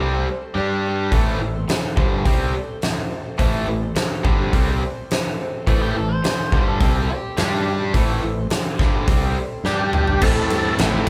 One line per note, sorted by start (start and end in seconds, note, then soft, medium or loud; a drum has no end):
0.00 0.23 C2 medium
0.00 0.26 C3 medium
0.00 0.26 G3 medium
0.00 0.13 A3 medium
0.00 0.13 C4 medium
0.00 0.26 C4 loud
0.00 0.13 A4 medium
0.00 0.13 C5 medium
0.14 0.27 A3 soft
0.14 0.28 C4 soft
0.14 0.28 A4 soft
0.14 0.28 C5 soft
0.28 0.56 A3 medium
0.28 0.56 C4 medium
0.28 0.57 A4 medium
0.28 0.57 C5 medium
0.55 1.08 G2 medium
0.55 1.11 G3 medium
0.55 0.84 G3 medium
0.55 1.11 D4 medium
0.55 0.85 D4 medium
0.55 1.11 G4 medium
0.55 0.85 G4 medium
0.55 0.85 D5 medium
0.86 1.13 G3 medium
0.86 1.12 D4 medium
0.86 1.14 G4 medium
0.86 1.13 D5 medium
1.11 1.38 A1 medium
1.11 1.54 A2 medium
1.11 1.40 A2 medium
1.11 1.40 E3 medium
1.11 1.55 E3 medium
1.11 1.55 A3 medium
1.11 1.40 A3 medium
1.11 1.54 C4 medium
1.11 1.54 A4 medium
1.11 1.53 C5 medium
1.11 kick medium
1.11 open hi-hat soft
1.40 1.66 A1 medium
1.40 1.63 A2 soft
1.40 1.63 E3 medium
1.54 1.68 A3 soft
1.54 1.68 C4 soft
1.54 1.68 A4 soft
1.54 1.68 C5 medium
1.68 1.97 A2 medium
1.68 1.97 E3 medium
1.68 1.95 A3 medium
1.68 1.97 C4 medium
1.68 1.97 A4 medium
1.68 1.97 C5 medium
1.68 muted overdriven electric guitar stroke medium
1.68 muted fingered electric bass stroke soft
1.68 muted distorted electric guitar stroke medium
1.68 snare loud
1.68 open hi-hat soft
1.96 2.24 G1 medium
1.96 2.24 G2 medium
1.96 2.25 D3 medium
1.96 2.25 G3 medium
1.96 2.40 A3 medium
1.96 2.40 C4 medium
1.96 2.41 A4 medium
1.96 2.39 C5 medium
1.96 kick loud
2.25 2.52 C2 medium
2.25 2.53 C3 medium
2.25 2.53 G3 loud
2.25 2.54 C4 loud
2.25 kick loud
2.25 open hi-hat medium
2.41 2.52 A3 soft
2.41 2.53 C4 soft
2.41 2.54 A4 soft
2.41 2.54 C5 soft
2.53 2.82 A3 medium
2.53 2.82 C4 medium
2.53 2.82 A4 medium
2.53 2.83 C5 medium
2.81 3.10 A2 medium
2.81 3.11 E3 medium
2.81 3.08 A3 medium
2.81 3.09 C4 medium
2.81 3.11 A4 medium
2.81 3.11 C5 medium
2.81 snare medium
2.81 open hi-hat soft
3.10 3.37 A3 medium
3.10 3.36 C4 medium
3.10 3.37 A4 medium
3.10 3.38 C5 medium
3.37 3.66 A1 medium
3.37 3.81 A2 medium
3.37 3.66 A2 medium
3.37 3.81 E3 medium
3.37 3.67 E3 medium
3.37 3.81 A3 medium
3.37 3.67 A3 medium
3.37 3.81 C4 medium
3.37 3.81 A4 medium
3.37 3.79 C5 medium
3.37 kick medium
3.37 open hi-hat soft
3.67 3.94 A1 medium
3.67 3.91 A2 medium
3.67 3.91 E3 medium
3.80 3.95 A3 soft
3.80 3.96 C4 soft
3.80 3.96 A4 soft
3.80 3.95 C5 soft
3.95 4.25 A2 medium
3.95 4.24 E3 medium
3.95 4.24 A3 medium
3.95 4.25 C4 medium
3.95 4.25 A4 medium
3.95 4.25 C5 medium
3.95 muted fingered electric bass stroke soft
3.95 muted overdriven electric guitar stroke medium
3.95 muted distorted electric guitar stroke medium
3.95 snare loud
3.95 open hi-hat soft
4.24 4.51 G1 medium
4.24 4.52 G2 medium
4.24 4.52 D3 loud
4.24 4.52 G3 loud
4.24 4.39 A3 medium
4.24 4.39 C4 medium
4.24 4.40 A4 medium
4.24 4.40 C5 medium
4.24 kick loud
4.41 4.69 A3 soft
4.41 4.68 C4 soft
4.41 4.68 A4 soft
4.41 4.66 C5 medium
4.53 4.79 C2 medium
4.53 4.81 C3 medium
4.53 4.81 G3 medium
4.53 4.81 C4 loud
4.53 kick medium
4.53 open hi-hat soft
4.67 4.80 A3 soft
4.67 4.81 C4 soft
4.67 4.82 A4 soft
4.67 4.81 C5 medium
4.81 5.10 A3 medium
4.81 5.10 C4 medium
4.81 5.11 A4 medium
4.81 5.11 C5 medium
5.11 5.39 A2 medium
5.11 5.39 E3 medium
5.11 5.37 A3 medium
5.11 5.39 C4 medium
5.11 5.39 A4 medium
5.11 5.40 C5 medium
5.11 snare medium
5.11 open hi-hat soft
5.38 5.67 A3 medium
5.38 5.67 C4 medium
5.38 5.67 A4 medium
5.38 5.68 C5 medium
5.67 5.93 A1 medium
5.67 5.94 A2 medium
5.67 6.10 A2 medium
5.67 5.94 E3 medium
5.67 6.10 E3 medium
5.67 6.10 A3 medium
5.67 5.95 A3 medium
5.67 6.10 C4 medium
5.67 5.81 E4 medium
5.67 6.10 A4 medium
5.67 6.10 C5 medium
5.67 kick medium
5.67 open hi-hat soft
5.81 5.96 G4 medium
5.95 6.22 A1 medium
5.95 6.18 A2 medium
5.95 6.18 E3 medium
5.95 6.10 A4 medium
6.09 6.25 A3 soft
6.09 6.25 C4 soft
6.09 6.25 A4 soft
6.09 6.64 C5 medium
6.09 6.24 C5 medium
6.24 6.53 A2 medium
6.24 6.54 E3 medium
6.24 6.54 A3 medium
6.24 6.54 C4 medium
6.24 6.54 A4 medium
6.24 muted overdriven electric guitar stroke medium
6.24 muted distorted electric guitar stroke medium
6.24 snare loud
6.24 open hi-hat soft
6.28 6.54 C5 medium
6.52 6.79 G1 medium
6.52 6.80 G2 medium
6.52 6.80 D3 medium
6.52 6.79 G3 medium
6.52 6.97 A3 medium
6.52 kick loud
6.56 6.97 C4 medium
6.56 6.97 A4 medium
6.56 6.96 C5 medium
6.68 6.95 A4 medium
6.80 7.07 C2 medium
6.80 7.08 C3 medium
6.80 7.08 G3 medium
6.80 7.08 C4 loud
6.80 kick loud
6.80 open hi-hat soft
6.97 7.11 A3 soft
6.97 7.11 C4 soft
6.97 7.09 G4 medium
6.97 7.11 A4 medium
6.97 7.10 C5 medium
7.10 7.39 A3 medium
7.10 7.39 C4 medium
7.10 7.65 G4 medium
7.10 7.39 A4 medium
7.14 7.40 C5 medium
7.37 7.91 G2 loud
7.37 7.93 G3 medium
7.37 7.67 G3 medium
7.37 7.93 D4 medium
7.37 7.67 D4 medium
7.37 7.94 G4 loud
7.37 snare loud
7.37 open hi-hat soft
7.42 7.68 G4 medium
7.42 7.68 D5 medium
7.68 7.96 G3 medium
7.68 7.96 D4 medium
7.68 7.96 G4 medium
7.68 7.97 D5 medium
7.93 8.21 A1 medium
7.93 8.21 A2 medium
7.93 8.38 A2 medium
7.93 8.22 E3 loud
7.93 8.38 E3 medium
7.93 8.22 A3 loud
7.93 8.38 A3 medium
7.93 8.38 C4 medium
7.93 kick medium
7.93 open hi-hat soft
7.98 8.39 A4 medium
7.98 8.38 C5 medium
8.23 8.50 A1 medium
8.23 8.46 A2 medium
8.23 8.46 E3 medium
8.40 8.53 A3 soft
8.40 8.53 C4 soft
8.40 8.53 A4 soft
8.40 8.53 C5 medium
8.50 8.80 A2 medium
8.50 8.81 E3 medium
8.50 8.81 A3 medium
8.50 muted fingered electric bass stroke soft
8.50 muted distorted electric guitar stroke medium
8.50 muted overdriven electric guitar stroke medium
8.50 snare loud
8.50 open hi-hat medium
8.54 8.81 C4 medium
8.54 8.81 A4 medium
8.54 8.82 C5 medium
8.79 9.06 G1 medium
8.79 9.08 G2 medium
8.79 9.08 D3 medium
8.79 9.07 G3 loud
8.79 8.96 A3 medium
8.79 kick loud
8.79 snare soft
8.83 8.95 C4 medium
8.83 8.95 A4 medium
8.83 8.95 C5 medium
8.96 9.25 A3 soft
8.96 9.24 C4 soft
8.96 9.24 A4 soft
8.96 9.22 C5 medium
9.07 9.34 C2 medium
9.07 9.36 C3 medium
9.07 9.36 G3 medium
9.07 9.36 C4 loud
9.07 kick loud
9.07 open hi-hat medium
9.23 9.36 A3 soft
9.23 9.37 C4 soft
9.23 9.37 A4 soft
9.23 9.37 C5 medium
9.37 9.64 A3 medium
9.37 9.65 C4 medium
9.37 9.66 A4 medium
9.37 9.66 C5 medium
9.64 10.17 G2 medium
9.64 9.93 G3 medium
9.64 10.21 G3 medium
9.64 9.94 D4 medium
9.64 10.22 D4 medium
9.64 10.24 G4 medium
9.64 10.21 G4 medium
9.64 9.94 G4 medium
9.64 9.94 D5 medium
9.64 snare medium
9.93 10.23 G3 medium
9.93 10.23 D4 medium
9.93 10.23 G4 medium
9.93 10.23 D5 medium
9.93 mid tom medium
10.07 floor tom medium
10.20 10.42 A1 medium
10.20 10.78 A2 medium
10.20 10.51 A2 medium
10.20 11.09 E3 medium
10.20 10.79 E3 loud
10.20 10.51 E3 medium
10.20 11.09 A3 medium
10.20 10.67 A3 medium
10.20 10.50 A3 medium
10.20 10.80 A3 loud
10.20 11.09 C4 medium
10.20 10.68 C4 medium
10.20 10.68 E4 medium
10.20 10.51 E4 medium
10.20 11.09 A4 medium
10.20 10.75 A4 loud
10.20 kick loud
10.20 crash loud
10.20 cowbell medium
10.24 10.80 C4 loud
10.24 10.50 C4 medium
10.24 10.80 E4 loud
10.24 10.52 A4 medium
10.24 10.69 A4 medium
10.50 10.70 G2 medium
10.50 10.78 A2 medium
10.50 10.79 E3 medium
10.50 10.77 A3 medium
10.50 10.79 C4 medium
10.50 10.79 E4 medium
10.50 10.78 A4 medium
10.50 ride medium
10.78 10.98 A1 medium
10.78 11.09 A2 medium
10.78 11.09 E3 medium
10.78 11.08 E3 medium
10.78 11.09 A3 medium
10.78 10.97 A3 loud
10.78 11.09 C4 medium
10.78 10.95 C4 medium
10.78 11.09 E4 medium
10.78 10.94 E4 loud
10.78 11.09 A4 medium
10.78 snare loud
10.78 ride loud
10.78 cowbell medium
10.95 11.09 A3 medium
10.95 11.09 C4 medium
10.95 11.09 E4 medium